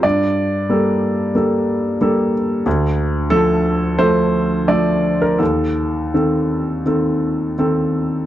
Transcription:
X:1
M:4/4
L:1/16
Q:1/4=88
K:Gm
V:1 name="Grand piano"
d12- d2 z2 | z4 A4 c4 d3 B | A12 z4 |]
V:2 name="Grand piano"
G,,4 [G,B,A]4 [G,B,A]4 [G,B,A]4 | D,,4 [F,A,]4 [F,A,A]4 [F,A,A]4 | E,,4 [E,CA]4 [E,CA]4 [E,CA]4 |]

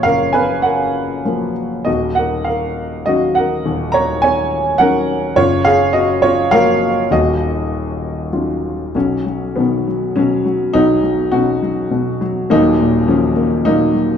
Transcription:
X:1
M:3/4
L:1/8
Q:1/4=102
K:Ebm
V:1 name="Grand piano"
[Bf] [ca] [Bg]3 z | [Ge] [Bg] [Bf]2 [Ge] [Bg]- | [Bg] [db] [da]2 [Bg]2 | [Fd] [Af] [Ge] [Fd] [Bf]2 |
[Ge]4 z2 | [^F,^C]2 [^D,F,=B,]2 [F,C]2 | [^F,^D]2 [^CD^F]3 z | [G,B,E]2 [F,G,D]2 [G,B,E]2 |]
V:2 name="Grand piano" clef=bass
[G,,,G,,B,,F,G,]4 [F,G,B,]2 | [E,,,E,,]4 [E,G,D]2 | [E,,,E,,]4 [E,G,D]2 | [G,,,G,,]4 [F,G,B,]2 |
[E,,,E,,]4 [G,DEF]2 | [=B,,,=B,,] ^F, B,, F, B,, F, | [=B,,,=B,,] ^F, B,, F, B,, F, | [E,,,E,,] B,, E, B, B,, G, |]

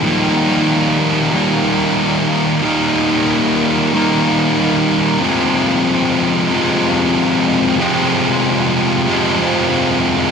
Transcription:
X:1
M:4/4
L:1/8
Q:1/4=93
K:Fm
V:1 name="Distorted electric guitar" clef=bass
[E,G,B,E]4 [E,G,B,E]4 | [E,G,B,E]4 [E,G,B,E]4 | [F,,C,F,A,C]4 [F,,C,F,A,C]4 | [F,,C,F,A,C]4 [F,,C,F,A,C]4 |]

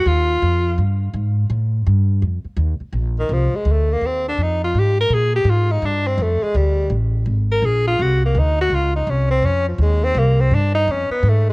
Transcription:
X:1
M:4/4
L:1/8
Q:"Swing" 1/4=166
K:Eblyd
V:1 name="Tenor saxophone"
F4 z4 | z8 | [K:Bb] z E, F, _A, =A, B, C D | E F G B _A G F E |
D C A, _A, G,2 z2 | z B _A F _G B, E G | F E _D C D F, _A, C | B, C D E _D _C A, _A, |]
V:2 name="Upright bass" clef=bass
E,,2 F,,2 G,,2 _A,,2 | A,,2 G,,2 F,, z E,, z | [K:Bb] B,,,2 C,, z D,,2 E,,2 | F,,2 _A,,2 B,,2 A,,2 |
G,,2 F,, z D,,2 A,,,2 | _A,,,2 B,,,2 C,,2 D,,2 | _D,,2 C,,2 F,,2 E,,2 | C,,2 G,,2 F,, z _A,,2 |]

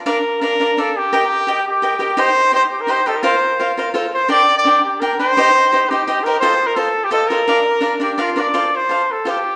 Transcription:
X:1
M:3/4
L:1/16
Q:1/4=170
K:Bb
V:1 name="Cavaquinho"
[DBdf]2 z2 [DBdf]2 [DBdf]2 [DBdf]2 z2 | [GBeg]2 z2 [GBeg]2 z2 [GBeg]2 [GBeg]2 | [EGce]2 z2 [EGce]2 z2 [EGce]2 [EGce]2 | [FBcf]2 z2 [FBcf]2 [FBcf]2 [FAcf]2 z2 |
[DBdg]2 z2 [DBdg]2 z2 [DBdg]2 [DBdg]2 | [EGce]2 z2 [EGce]2 [EGce]2 [EGce]2 [EGce]2 | [FAce]2 z2 [FAce]2 z2 [FAce]2 [FAce]2 | [DBdf]2 z2 [DBdf]2 [DBdf]2 [DBdf]2 [DBdf]2 |
[FAcf]2 z2 [FAcf]2 z2 [FAcf]2 z2 |]
V:2 name="Trumpet"
B4 B4 A2 G2- | G6 G6 | c4 c2 G B c2 A B | c6 z4 c2 |
d3 d3 G2 B2 c2- | c6 G4 B2 | c3 B A3 G A2 B2- | B6 G2 F2 d2- |
d2 c4 A2 G4 |]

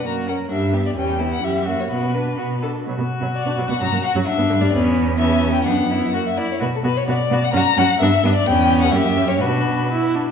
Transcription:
X:1
M:2/4
L:1/16
Q:1/4=129
K:Bm
V:1 name="Violin"
^a2 f2 e3 d | g3 f e3 c | B6 z2 | z4 d3 f |
^a2 f2 e3 d | z4 e3 g | f4 z e d c | B A B c d3 f |
^a2 f2 e3 d | g3 f e3 c | B6 z2 |]
V:2 name="Violin"
F2 ^A2 D2 G2 | C2 E2 G2 F2 | F2 B2 F2 A2 | F8- |
F4 D4 | C4 C4 | D2 E2 F2 E2 | F2 F2 F2 F2 |
F2 F2 D2 D2 | C4 G4 | F6 z2 |]
V:3 name="Viola"
^A,2 C2 G,2 B,2 | G,2 B,2 G,2 ^A,2 | B,2 D2 B,2 D2 | F, B, z F, z D F, B, |
F, ^A, z F, z B, D, G, | B,4 B,4 | B,4 ^A,2 z2 | B,2 B,2 B,2 B,2 |
C2 C2 B,2 B,2 | B,4 ^A,2 C2 | D4 E2 D2 |]
V:4 name="Cello" clef=bass
F,,4 G,,4 | E,,4 F,,4 | B,,4 B,,4 | B,, B,, z B,, z B,, B,, B,, |
F,, F,, z F,, z G,, G,, G,, | E,,8 | F,,6 z2 | B,,2 B,,2 B,,2 B,,2 |
F,,2 F,,2 G,,2 G,,2 | E,,4 F,,4 | B,,6 z2 |]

